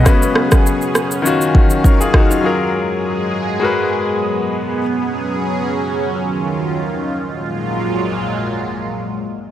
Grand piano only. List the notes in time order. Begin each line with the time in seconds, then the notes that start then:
Already playing: D#5
0.03 C#3 C#4 F#4
0.08 B4
1.22 D#3 C#4 F4
1.27 F#4
1.84 F#4 A#4
2.00 F4 G#4
2.14 D#4 F#4
2.30 C#4 F4
2.41 F#3 F4 G#4
2.46 A#4
3.60 G#3 F#4 A#4
3.65 B4